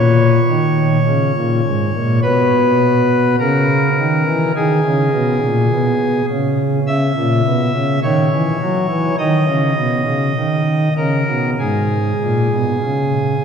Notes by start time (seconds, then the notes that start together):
Already playing: A#2 C#5
0.49 D#3
1.07 C#3
1.36 A#2
1.66 G#2
1.95 A#2
2.23 B2 B4
3.40 C#3 A#4
3.99 D#3
4.26 E3
4.56 D#3 G#4
4.85 C#3
5.14 B2
5.44 A#2
5.73 B2
6.30 C#3
6.87 C#3 E5
7.17 A#2
7.47 B2
7.75 C#3
8.03 D#3 C#5
8.32 E3
8.62 F#3
8.89 E3
9.18 D#3 D#5
9.47 C#3
9.77 B2
10.06 C#3
10.37 D#3
10.97 C#3 A#4
11.28 B2
11.59 G#2 G#4
12.22 A#2
12.53 B2
12.83 C#3